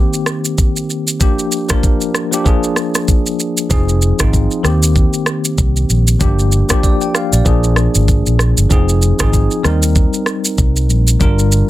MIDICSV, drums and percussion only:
0, 0, Header, 1, 2, 480
1, 0, Start_track
1, 0, Tempo, 625000
1, 927, Time_signature, 4, 2, 24, 8
1, 8984, End_track
2, 0, Start_track
2, 0, Title_t, "Drums"
2, 104, Note_on_c, 9, 82, 53
2, 181, Note_off_c, 9, 82, 0
2, 202, Note_on_c, 9, 37, 97
2, 206, Note_on_c, 9, 82, 53
2, 279, Note_off_c, 9, 37, 0
2, 283, Note_off_c, 9, 82, 0
2, 345, Note_on_c, 9, 82, 87
2, 421, Note_off_c, 9, 82, 0
2, 448, Note_on_c, 9, 36, 94
2, 448, Note_on_c, 9, 82, 78
2, 524, Note_off_c, 9, 36, 0
2, 524, Note_off_c, 9, 82, 0
2, 587, Note_on_c, 9, 82, 51
2, 664, Note_off_c, 9, 82, 0
2, 690, Note_on_c, 9, 82, 51
2, 766, Note_off_c, 9, 82, 0
2, 826, Note_on_c, 9, 82, 94
2, 903, Note_off_c, 9, 82, 0
2, 927, Note_on_c, 9, 36, 107
2, 927, Note_on_c, 9, 82, 77
2, 1003, Note_off_c, 9, 82, 0
2, 1004, Note_off_c, 9, 36, 0
2, 1066, Note_on_c, 9, 82, 52
2, 1143, Note_off_c, 9, 82, 0
2, 1166, Note_on_c, 9, 82, 62
2, 1243, Note_off_c, 9, 82, 0
2, 1301, Note_on_c, 9, 82, 87
2, 1306, Note_on_c, 9, 37, 114
2, 1308, Note_on_c, 9, 36, 86
2, 1377, Note_off_c, 9, 82, 0
2, 1382, Note_off_c, 9, 37, 0
2, 1385, Note_off_c, 9, 36, 0
2, 1408, Note_on_c, 9, 36, 94
2, 1409, Note_on_c, 9, 82, 68
2, 1485, Note_off_c, 9, 36, 0
2, 1486, Note_off_c, 9, 82, 0
2, 1542, Note_on_c, 9, 82, 51
2, 1619, Note_off_c, 9, 82, 0
2, 1648, Note_on_c, 9, 37, 89
2, 1651, Note_on_c, 9, 82, 49
2, 1725, Note_off_c, 9, 37, 0
2, 1728, Note_off_c, 9, 82, 0
2, 1789, Note_on_c, 9, 82, 108
2, 1866, Note_off_c, 9, 82, 0
2, 1887, Note_on_c, 9, 36, 107
2, 1888, Note_on_c, 9, 82, 66
2, 1964, Note_off_c, 9, 36, 0
2, 1965, Note_off_c, 9, 82, 0
2, 2024, Note_on_c, 9, 82, 51
2, 2101, Note_off_c, 9, 82, 0
2, 2122, Note_on_c, 9, 37, 94
2, 2126, Note_on_c, 9, 82, 54
2, 2199, Note_off_c, 9, 37, 0
2, 2203, Note_off_c, 9, 82, 0
2, 2264, Note_on_c, 9, 82, 88
2, 2267, Note_on_c, 9, 37, 84
2, 2341, Note_off_c, 9, 82, 0
2, 2344, Note_off_c, 9, 37, 0
2, 2367, Note_on_c, 9, 36, 88
2, 2367, Note_on_c, 9, 82, 73
2, 2444, Note_off_c, 9, 36, 0
2, 2444, Note_off_c, 9, 82, 0
2, 2506, Note_on_c, 9, 82, 50
2, 2583, Note_off_c, 9, 82, 0
2, 2609, Note_on_c, 9, 82, 50
2, 2686, Note_off_c, 9, 82, 0
2, 2746, Note_on_c, 9, 82, 94
2, 2823, Note_off_c, 9, 82, 0
2, 2846, Note_on_c, 9, 82, 76
2, 2847, Note_on_c, 9, 36, 112
2, 2923, Note_off_c, 9, 82, 0
2, 2924, Note_off_c, 9, 36, 0
2, 2986, Note_on_c, 9, 82, 51
2, 3063, Note_off_c, 9, 82, 0
2, 3086, Note_on_c, 9, 82, 62
2, 3163, Note_off_c, 9, 82, 0
2, 3221, Note_on_c, 9, 82, 89
2, 3226, Note_on_c, 9, 37, 119
2, 3228, Note_on_c, 9, 36, 86
2, 3298, Note_off_c, 9, 82, 0
2, 3303, Note_off_c, 9, 37, 0
2, 3305, Note_off_c, 9, 36, 0
2, 3328, Note_on_c, 9, 36, 94
2, 3330, Note_on_c, 9, 82, 67
2, 3405, Note_off_c, 9, 36, 0
2, 3406, Note_off_c, 9, 82, 0
2, 3463, Note_on_c, 9, 82, 50
2, 3540, Note_off_c, 9, 82, 0
2, 3568, Note_on_c, 9, 37, 88
2, 3571, Note_on_c, 9, 82, 51
2, 3644, Note_off_c, 9, 37, 0
2, 3648, Note_off_c, 9, 82, 0
2, 3709, Note_on_c, 9, 82, 106
2, 3785, Note_off_c, 9, 82, 0
2, 3807, Note_on_c, 9, 36, 114
2, 3808, Note_on_c, 9, 82, 66
2, 3884, Note_off_c, 9, 36, 0
2, 3884, Note_off_c, 9, 82, 0
2, 3944, Note_on_c, 9, 82, 52
2, 4020, Note_off_c, 9, 82, 0
2, 4041, Note_on_c, 9, 37, 98
2, 4046, Note_on_c, 9, 82, 51
2, 4118, Note_off_c, 9, 37, 0
2, 4122, Note_off_c, 9, 82, 0
2, 4184, Note_on_c, 9, 82, 88
2, 4261, Note_off_c, 9, 82, 0
2, 4287, Note_on_c, 9, 36, 90
2, 4287, Note_on_c, 9, 82, 76
2, 4364, Note_off_c, 9, 36, 0
2, 4364, Note_off_c, 9, 82, 0
2, 4426, Note_on_c, 9, 82, 49
2, 4503, Note_off_c, 9, 82, 0
2, 4530, Note_on_c, 9, 82, 53
2, 4606, Note_off_c, 9, 82, 0
2, 4666, Note_on_c, 9, 82, 94
2, 4743, Note_off_c, 9, 82, 0
2, 4767, Note_on_c, 9, 36, 112
2, 4767, Note_on_c, 9, 82, 79
2, 4844, Note_off_c, 9, 36, 0
2, 4844, Note_off_c, 9, 82, 0
2, 4907, Note_on_c, 9, 82, 51
2, 4984, Note_off_c, 9, 82, 0
2, 5007, Note_on_c, 9, 82, 61
2, 5084, Note_off_c, 9, 82, 0
2, 5142, Note_on_c, 9, 82, 95
2, 5147, Note_on_c, 9, 37, 114
2, 5148, Note_on_c, 9, 36, 89
2, 5219, Note_off_c, 9, 82, 0
2, 5224, Note_off_c, 9, 37, 0
2, 5225, Note_off_c, 9, 36, 0
2, 5249, Note_on_c, 9, 36, 89
2, 5251, Note_on_c, 9, 82, 69
2, 5325, Note_off_c, 9, 36, 0
2, 5327, Note_off_c, 9, 82, 0
2, 5383, Note_on_c, 9, 82, 50
2, 5460, Note_off_c, 9, 82, 0
2, 5488, Note_on_c, 9, 37, 89
2, 5492, Note_on_c, 9, 82, 51
2, 5565, Note_off_c, 9, 37, 0
2, 5569, Note_off_c, 9, 82, 0
2, 5629, Note_on_c, 9, 82, 106
2, 5706, Note_off_c, 9, 82, 0
2, 5727, Note_on_c, 9, 36, 115
2, 5729, Note_on_c, 9, 82, 68
2, 5804, Note_off_c, 9, 36, 0
2, 5805, Note_off_c, 9, 82, 0
2, 5865, Note_on_c, 9, 82, 51
2, 5942, Note_off_c, 9, 82, 0
2, 5962, Note_on_c, 9, 37, 94
2, 5966, Note_on_c, 9, 82, 52
2, 6039, Note_off_c, 9, 37, 0
2, 6043, Note_off_c, 9, 82, 0
2, 6105, Note_on_c, 9, 82, 87
2, 6181, Note_off_c, 9, 82, 0
2, 6207, Note_on_c, 9, 82, 72
2, 6208, Note_on_c, 9, 36, 88
2, 6284, Note_off_c, 9, 36, 0
2, 6284, Note_off_c, 9, 82, 0
2, 6347, Note_on_c, 9, 82, 51
2, 6424, Note_off_c, 9, 82, 0
2, 6445, Note_on_c, 9, 37, 90
2, 6450, Note_on_c, 9, 82, 49
2, 6522, Note_off_c, 9, 37, 0
2, 6526, Note_off_c, 9, 82, 0
2, 6586, Note_on_c, 9, 82, 100
2, 6663, Note_off_c, 9, 82, 0
2, 6687, Note_on_c, 9, 36, 111
2, 6687, Note_on_c, 9, 82, 78
2, 6763, Note_off_c, 9, 82, 0
2, 6764, Note_off_c, 9, 36, 0
2, 6827, Note_on_c, 9, 82, 54
2, 6904, Note_off_c, 9, 82, 0
2, 6927, Note_on_c, 9, 82, 63
2, 7003, Note_off_c, 9, 82, 0
2, 7061, Note_on_c, 9, 82, 91
2, 7066, Note_on_c, 9, 37, 118
2, 7068, Note_on_c, 9, 36, 81
2, 7138, Note_off_c, 9, 82, 0
2, 7143, Note_off_c, 9, 37, 0
2, 7145, Note_off_c, 9, 36, 0
2, 7168, Note_on_c, 9, 36, 87
2, 7169, Note_on_c, 9, 82, 67
2, 7245, Note_off_c, 9, 36, 0
2, 7246, Note_off_c, 9, 82, 0
2, 7302, Note_on_c, 9, 82, 53
2, 7379, Note_off_c, 9, 82, 0
2, 7407, Note_on_c, 9, 37, 87
2, 7411, Note_on_c, 9, 82, 49
2, 7484, Note_off_c, 9, 37, 0
2, 7487, Note_off_c, 9, 82, 0
2, 7548, Note_on_c, 9, 82, 109
2, 7624, Note_off_c, 9, 82, 0
2, 7647, Note_on_c, 9, 36, 109
2, 7647, Note_on_c, 9, 82, 68
2, 7724, Note_off_c, 9, 36, 0
2, 7724, Note_off_c, 9, 82, 0
2, 7783, Note_on_c, 9, 82, 51
2, 7860, Note_off_c, 9, 82, 0
2, 7881, Note_on_c, 9, 37, 94
2, 7885, Note_on_c, 9, 82, 53
2, 7958, Note_off_c, 9, 37, 0
2, 7962, Note_off_c, 9, 82, 0
2, 8024, Note_on_c, 9, 82, 89
2, 8101, Note_off_c, 9, 82, 0
2, 8127, Note_on_c, 9, 36, 94
2, 8127, Note_on_c, 9, 82, 71
2, 8204, Note_off_c, 9, 36, 0
2, 8204, Note_off_c, 9, 82, 0
2, 8267, Note_on_c, 9, 82, 51
2, 8344, Note_off_c, 9, 82, 0
2, 8369, Note_on_c, 9, 82, 49
2, 8446, Note_off_c, 9, 82, 0
2, 8506, Note_on_c, 9, 82, 101
2, 8583, Note_off_c, 9, 82, 0
2, 8607, Note_on_c, 9, 36, 109
2, 8607, Note_on_c, 9, 82, 80
2, 8684, Note_off_c, 9, 36, 0
2, 8684, Note_off_c, 9, 82, 0
2, 8747, Note_on_c, 9, 82, 51
2, 8824, Note_off_c, 9, 82, 0
2, 8847, Note_on_c, 9, 82, 64
2, 8923, Note_off_c, 9, 82, 0
2, 8984, End_track
0, 0, End_of_file